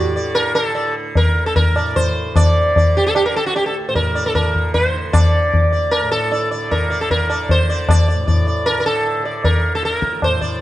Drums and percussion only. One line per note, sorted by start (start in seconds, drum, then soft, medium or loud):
0.35 tabla na medium
0.55 tabla na medium
0.75 tabla tin medium
1.15 tabla tin medium
1.15 tabla ge medium
1.56 tabla tin medium
1.56 tabla ge medium
1.76 tabla na medium
1.96 tabla tin medium
1.96 tabla ge medium
2.36 tabla na loud
2.36 tabla ge medium
2.76 tabla tin medium
2.76 tabla ge medium
3.15 tabla na medium
3.56 tabla tin medium
3.95 tabla tin medium
3.95 tabla ge medium
4.35 tabla na medium
4.35 tabla ge medium
4.55 tabla ge medium
4.74 tabla tin medium
4.74 tabla ge medium
5.14 tabla na loud
5.14 tabla ge medium
5.54 tabla tin medium
5.54 tabla ge medium
5.93 tabla na medium
6.32 tabla tin medium
6.72 tabla tin medium
6.72 tabla ge medium
7.11 tabla tin medium
7.11 tabla ge medium
7.30 tabla na medium
7.49 tabla tin medium
7.49 tabla ge medium
7.89 tabla na loud
7.89 tabla ge medium
8.28 tabla tin medium
8.28 tabla ge medium
8.67 tabla na medium
9.06 tabla tin medium
9.44 tabla tin medium
9.44 tabla ge medium
9.83 tabla te medium
9.93 tabla te medium
10.02 tabla ke medium
10.13 tabla te medium
10.22 tabla na medium
10.22 tabla ge medium
10.42 tabla ge medium